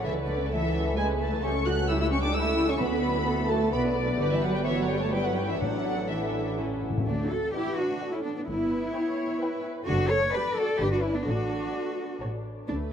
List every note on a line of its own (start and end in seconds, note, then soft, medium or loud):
0.00 0.14 C#3 medium
0.00 0.13 E3 medium
0.00 0.11 E3 medium
0.00 1.42 A4 medium
0.00 0.12 E5 medium
0.04 1.42 C#2 medium
0.04 0.49 B4 medium
0.14 0.27 E3 soft
0.27 0.35 D3 medium
0.27 0.37 D3 medium
0.27 0.39 A3 soft
0.27 0.50 D5 medium
0.38 0.50 C#4 medium
0.49 0.95 E3 medium
0.49 0.62 A3 medium
0.49 0.97 A4 medium
0.49 0.95 E5 medium
0.62 0.73 E3 soft
0.74 0.85 C#3 soft
0.84 0.96 E3 medium
0.96 1.18 G#3 medium
0.96 1.20 G#3 medium
0.96 1.08 A3 medium
0.96 1.43 B4 medium
0.96 1.05 G#5 medium
1.07 1.19 C#4 soft
1.18 1.30 A3 medium
1.18 1.42 A3 medium
1.18 1.42 A5 medium
1.31 1.42 E3 medium
1.42 2.77 C#2 medium
1.42 1.53 G3 medium
1.42 1.50 C#4 medium
1.42 1.65 C#4 medium
1.42 1.53 G4 medium
1.42 1.87 A4 medium
1.42 1.66 C#6 medium
1.53 1.65 A3 soft
1.53 1.65 A4 soft
1.65 1.77 G3 soft
1.65 1.89 F#4 medium
1.65 1.74 F#4 medium
1.65 1.77 G4 soft
1.65 1.88 F#6 medium
1.77 1.88 A3 medium
1.77 1.88 A4 soft
1.88 1.99 G3 medium
1.88 2.00 E4 medium
1.88 1.99 E4 medium
1.88 1.99 G4 medium
1.88 2.35 G4 medium
1.88 2.00 E6 medium
2.00 2.12 A3 soft
2.00 2.05 E4 medium
2.00 2.06 E4 medium
2.00 2.11 A4 soft
2.00 2.06 E6 medium
2.10 2.23 G3 soft
2.10 2.16 C#4 medium
2.10 2.23 G4 medium
2.10 2.23 C#6 medium
2.22 2.35 A3 soft
2.22 2.34 D4 medium
2.22 2.28 D4 medium
2.22 2.34 A4 soft
2.22 2.34 D6 medium
2.34 2.45 G3 medium
2.34 2.69 E4 medium
2.34 2.45 G4 medium
2.34 2.80 A4 medium
2.34 2.69 E6 medium
2.45 2.57 A3 medium
2.45 2.57 A4 medium
2.57 2.69 G3 medium
2.57 2.69 G4 medium
2.69 2.81 A3 medium
2.69 2.80 C#4 medium
2.69 2.81 C#4 medium
2.69 2.81 A4 medium
2.69 2.81 C#6 medium
2.79 3.72 D2 medium
2.79 3.46 D3 medium
2.79 2.92 F#3 medium
2.79 3.49 B3 medium
2.79 2.92 F#4 medium
2.79 3.25 B4 medium
2.79 3.49 B5 medium
2.93 3.04 A3 soft
2.93 3.04 A4 soft
3.04 3.16 F#3 soft
3.04 3.15 F#4 medium
3.15 3.27 A3 medium
3.15 3.27 A4 medium
3.27 3.37 F#3 medium
3.27 3.37 F#4 medium
3.27 3.73 A4 medium
3.39 3.50 A3 soft
3.39 3.50 A4 medium
3.49 3.61 F#3 soft
3.49 3.72 A3 medium
3.49 3.73 A3 medium
3.49 3.61 F#4 medium
3.49 3.73 A5 medium
3.61 3.73 A3 soft
3.61 3.73 A4 soft
3.72 4.20 B1 medium
3.72 3.95 B3 medium
3.72 3.96 B3 medium
3.72 3.84 B3 medium
3.72 3.84 F#4 medium
3.72 4.19 D5 medium
3.72 3.81 B5 medium
3.85 3.96 D4 soft
3.85 3.97 B4 soft
3.96 4.08 B3 medium
3.96 4.08 F#4 medium
4.07 4.19 D4 medium
4.07 4.19 B4 medium
4.18 5.58 G1 medium
4.18 4.30 D3 medium
4.18 4.24 D3 medium
4.18 5.09 B3 medium
4.18 4.62 G4 medium
4.18 4.67 B4 medium
4.18 4.30 D5 medium
4.31 4.43 E3 medium
4.31 4.36 E3 medium
4.31 4.43 E5 medium
4.42 4.54 F#3 medium
4.42 4.55 F#5 medium
4.53 4.66 G3 medium
4.53 4.59 G5 medium
4.65 4.71 E3 medium
4.65 4.78 E3 medium
4.65 5.13 F#4 medium
4.65 5.13 C#5 medium
4.65 4.77 E5 medium
4.78 4.89 F#3 medium
4.78 4.83 F#3 soft
4.78 4.91 F#5 medium
4.89 5.01 G3 medium
4.89 5.02 G5 medium
4.99 5.12 A3 medium
4.99 5.14 A3 medium
4.99 5.14 A5 medium
5.12 5.24 G3 medium
5.12 5.19 G3 medium
5.12 5.37 B3 medium
5.12 5.59 E4 medium
5.12 5.62 B4 medium
5.12 5.25 G5 medium
5.25 5.38 F#3 medium
5.25 5.37 F#5 medium
5.36 5.49 G3 medium
5.36 5.50 G3 medium
5.36 5.62 C#4 medium
5.36 5.49 G5 medium
5.48 5.54 E3 medium
5.48 5.62 E3 medium
5.48 5.61 E5 medium
5.60 6.84 A1 medium
5.60 6.31 A2 medium
5.60 6.09 F#3 medium
5.60 6.09 D4 medium
5.60 6.09 E4 medium
5.60 6.80 A4 medium
5.60 6.10 F#5 medium
6.10 6.57 E3 soft
6.10 6.58 E3 medium
6.10 6.58 D4 medium
6.10 6.58 E4 medium
6.10 6.58 E5 medium
6.59 6.66 A2 soft
6.59 6.87 C#4 medium
6.59 6.86 E4 soft
6.67 6.74 A2 soft
6.75 6.81 A2 soft
6.82 6.89 A2 soft
6.90 6.96 A2 medium
6.97 7.04 A2 medium
7.06 7.44 D2 medium
7.06 7.29 A3 medium
7.06 7.29 D4 medium
7.30 7.39 F#4 medium
7.30 7.53 A4 medium
7.53 7.77 E4 medium
7.53 7.76 G4 medium
7.53 7.97 B4 medium
7.53 7.89 D5 medium
7.53 7.89 F#5 medium
7.76 8.12 D4 medium
7.76 8.12 F#4 medium
8.01 8.48 A4 soft
8.01 8.36 D5 medium
8.01 8.36 F#5 medium
8.12 8.17 C#4 medium
8.12 8.24 E4 medium
8.23 8.29 B3 medium
8.23 8.35 D4 medium
8.36 8.45 B3 medium
8.36 8.41 D4 medium
8.47 8.85 G1 medium
8.47 9.61 B3 medium
8.47 9.61 E4 medium
8.47 8.93 B4 medium
8.93 9.29 B4 medium
8.93 9.40 C#5 medium
8.93 9.29 G5 medium
9.39 9.86 B4 medium
9.39 9.76 B4 medium
9.39 9.75 G5 medium
9.85 10.24 F#1 medium
9.85 10.08 D4 medium
9.85 10.08 F#4 loud
9.85 10.32 A4 medium
10.09 10.17 A4 medium
10.09 10.33 C#5 loud
10.33 10.42 G4 medium
10.33 10.56 B4 medium
10.33 10.79 D5 medium
10.33 10.68 D5 medium
10.33 10.68 A5 medium
10.56 10.66 F#4 medium
10.56 10.80 A4 loud
10.78 11.17 G1 medium
10.78 10.90 D4 medium
10.78 10.91 G4 loud
10.78 11.26 B4 medium
10.78 11.14 D5 medium
10.78 11.15 B5 medium
10.91 11.03 D4 medium
10.91 11.03 F#4 medium
11.02 11.15 C#4 medium
11.02 11.15 E4 medium
11.15 11.27 B3 medium
11.15 11.27 D4 medium
11.24 11.64 A1 medium
11.24 12.22 D4 medium
11.24 12.21 F#4 medium
11.24 12.44 A4 medium
11.73 12.09 D5 medium
11.73 12.09 A5 medium
12.21 12.59 A1 medium
12.21 12.57 C#5 medium
12.21 12.57 A5 medium
12.67 12.93 D2 medium
12.67 12.90 A3 medium
12.67 12.77 D4 medium
12.67 12.93 B4 medium